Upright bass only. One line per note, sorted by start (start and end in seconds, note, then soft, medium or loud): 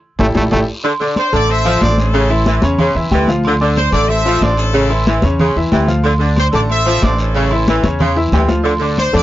0.19 0.31 A1 medium
0.35 0.47 A1 loud
0.52 0.64 A1 loud
1.33 1.78 A1 loud
1.81 2.57 A1 medium
2.62 2.93 E2 medium
2.95 3.10 E2 medium
3.11 3.87 D2 medium
3.92 4.38 A1 loud
4.41 5.17 A1 medium
5.23 5.53 E2 medium
5.56 5.71 E2 medium
5.72 6.47 D2 loud
6.53 6.99 A1 medium
7.02 7.78 A1 loud
7.83 8.29 E2 loud
8.32 9.08 D2 medium
9.14 9.23 F2 loud